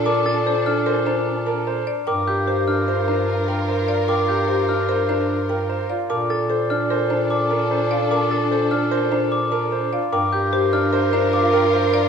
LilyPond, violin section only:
\new Staff \with { instrumentName = "Violin section" } { \time 5/4 \key bes \major \tempo 4 = 149 <d' a'>1~ <d' a'>8 r8 | <f' bes'>1~ <f' bes'>4~ | <f' bes'>1~ <f' bes'>8 r8 | <d' a'>1~ <d' a'>4~ |
<d' a'>1~ <d' a'>8 r8 | <f' bes'>1~ <f' bes'>4 | }